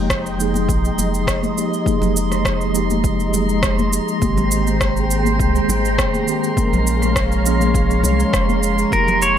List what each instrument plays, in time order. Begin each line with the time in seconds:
Already playing: analog synth bass F1, tine electric piano F3 G#3 A#3 D#4 G4, string machine G#3 D#5 G5 A#5, synth texture C6
0.10 kick, cross-stick, cabasa
0.26 cabasa
0.38 tine electric piano F3 G#3 A#3 D#4, cabasa
0.42 tine electric piano G#4
0.54 high conga, cabasa
0.69 analog synth bass A#1, kick, cabasa
0.85 cabasa
0.98 analog synth bass F1, high conga, low conga, cabasa
1.14 cabasa
1.27 kick, cross-stick, cabasa
1.43 high conga, cabasa
1.56 tine electric piano F3 G#3 A#3 D#4 G4, cabasa
1.73 cabasa
1.84 tine electric piano F3 G#3 A#3 D#4, kick, high conga, cabasa
1.89 tine electric piano G#4
2.02 analog synth bass F1, low conga, cabasa
2.16 cabasa
2.32 cross-stick, high conga, cabasa
2.45 kick, cross-stick, cabasa
2.61 cabasa
2.72 tine electric piano F3 G#3 A#3 D#4, cabasa
2.77 tine electric piano G4
2.90 high conga, cabasa
3.04 kick, cabasa
3.20 cabasa
3.33 high conga, low conga, cabasa
3.49 cabasa
3.63 kick, cross-stick, cabasa
3.79 high conga, cabasa
3.93 cabasa
4.08 cabasa
4.20 analog synth bass G#1, tine electric piano D#3 G#3 A#3 C4, string machine C5 G5, kick, high conga, cabasa
4.24 tine electric piano G4
4.37 low conga, cabasa
4.51 cabasa
4.67 high conga, cabasa
4.81 kick, cross-stick, cabasa
4.97 cabasa
5.08 tine electric piano D#3 G#3 A#3 C4, cabasa
5.13 tine electric piano G#4
5.25 high conga, cabasa
5.40 analog synth bass C2, kick, cabasa
5.56 cabasa
5.69 analog synth bass G#1, high conga, low conga, cabasa
5.85 cabasa
5.98 kick, cross-stick, cabasa
6.14 high conga, cabasa
6.27 tine electric piano D#3 G#3 A#3 C4 G4, cabasa
6.44 cabasa
6.56 tine electric piano F3 G#3 A#3 C#4, string machine C#5 F5, kick, high conga, cabasa
6.60 tine electric piano A#4
6.73 analog synth bass A#1, low conga, cabasa
6.87 cabasa
7.02 cross-stick, high conga, cabasa
7.16 kick, cross-stick, cabasa
7.32 cabasa
7.43 tine electric piano F3 G#3 A#3 C#4, cabasa
7.48 tine electric piano G#4
7.61 high conga, cabasa
7.74 kick, cabasa
7.91 cabasa
8.03 analog synth bass C2, high conga, low conga, cabasa
8.20 cabasa
8.33 analog synth bass F1, kick, cross-stick, cabasa
8.49 high conga, cabasa
8.63 cabasa
8.78 cabasa
8.90 analog synth bass F1, tine electric piano F3 G#3 A#3, pedal steel guitar A#4, string machine D#5 G5, kick, high conga, cabasa
8.95 tine electric piano G4
9.08 low conga, cabasa
9.22 pedal steel guitar C#5, cabasa